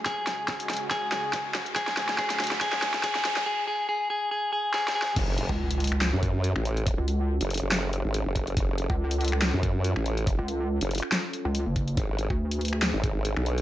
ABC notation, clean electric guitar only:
X:1
M:4/4
L:1/8
Q:"Swing 16ths" 1/4=141
K:F#m
V:1 name="Clean electric guitar"
G4 G4 | G2 G2 G2 G2 | G G G G G G G G | z8 |
z8 | z8 | z8 | z8 |]